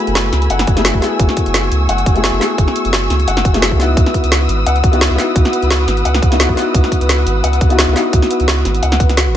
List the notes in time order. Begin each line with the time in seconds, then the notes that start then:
Already playing: A3 B3 E4 F#4 G#4 F#5 G#5 B5 E6
0.07 F#1, closed hi-hat
0.15 F#4, snare, closed hi-hat
0.33 C#2, snare, closed hi-hat
0.42 closed hi-hat
0.50 F#1 F#5, closed hi-hat
0.59 snare, closed hi-hat
0.67 F#1 F#4, kick, closed hi-hat
0.75 A3 B3 E4 G#4, snare, closed hi-hat
0.85 F#4, snare, closed hi-hat
0.94 F#1, kick
0.99 A3 B3 E4, snare, open hi-hat
1.05 G#4
1.19 F#1 F#4 C#6, kick, closed hi-hat
1.29 snare
1.37 kick, closed hi-hat
1.46 F#1, closed hi-hat
1.54 F#4, snare, closed hi-hat
1.72 C#2, closed hi-hat
1.89 F#1 F#5, closed hi-hat
1.98 closed hi-hat
2.06 F#1 F#4, kick, closed hi-hat
2.14 A3 B3 E4 G#4, closed hi-hat
2.24 F#4, snare, closed hi-hat
2.33 F#1
2.38 A3 B3 E4, snare, open hi-hat
2.44 G#4
2.58 F#1 F#4, kick, closed hi-hat
2.68 snare
2.76 closed hi-hat
2.85 F#1, closed hi-hat
2.93 F#4, snare, closed hi-hat
3.10 C#2, snare, closed hi-hat
3.20 closed hi-hat
3.28 F#1 F#5, closed hi-hat
3.37 snare, closed hi-hat
3.45 F#1 F#4, kick, closed hi-hat
3.53 A3 B3 E4 G#4, snare, closed hi-hat
3.62 F#4, snare, closed hi-hat
3.72 C#2, kick
3.77 B3 D#4 E4 B4 F#5 D#6, snare, open hi-hat
3.83 F#4
3.97 C#2 F#4, kick, closed hi-hat
4.06 snare
4.14 kick, closed hi-hat
4.24 C#2, closed hi-hat
4.32 F#4, snare, closed hi-hat
4.49 G#1, closed hi-hat
4.66 C#2 F#5, closed hi-hat
4.76 closed hi-hat
4.84 C#2 F#4, kick, closed hi-hat
4.92 B3 D#4 E4 F#4, closed hi-hat
5.01 F#4, snare, closed hi-hat
5.10 C#2
5.16 B3 D#4 E4, snare, open hi-hat
5.21 F#4
5.36 C#2 F#4, kick, closed hi-hat
5.45 snare
5.53 closed hi-hat
5.62 C#2, closed hi-hat
5.70 F#4, snare, closed hi-hat
5.88 G#1, snare, closed hi-hat
5.97 closed hi-hat
6.05 C#2 F#5, closed hi-hat
6.14 snare, closed hi-hat
6.22 C#2 F#4, kick, closed hi-hat
6.30 B3 D#4 E4 F#4, snare, closed hi-hat
6.40 F#4, snare, closed hi-hat
6.49 C#2, kick
6.54 B3 D#4 E4, snare, open hi-hat
6.60 F#4
6.74 C#2 F#4, kick, closed hi-hat
6.84 snare
6.92 kick, closed hi-hat
7.01 C#2, closed hi-hat
7.09 F#4, snare, closed hi-hat
7.26 G#1, closed hi-hat
7.44 C#2 F#5, closed hi-hat
7.53 closed hi-hat
7.61 C#2 F#4, kick, closed hi-hat
7.69 B3 D#4 E4 F#4, closed hi-hat
7.79 F#4, snare, closed hi-hat
7.88 C#2
7.93 B3 D#4 E4, snare, open hi-hat
7.99 F#4
8.13 C#2 F#4, kick, closed hi-hat
8.22 snare
8.31 closed hi-hat
8.40 C#2, closed hi-hat
8.48 F#4, snare, closed hi-hat
8.65 G#1, snare, closed hi-hat
8.75 closed hi-hat
8.83 C#2 F#5, closed hi-hat
8.92 snare, closed hi-hat
9.00 C#2 B4, kick, closed hi-hat
9.09 snare, closed hi-hat
9.17 F#4, snare, closed hi-hat
9.27 G#1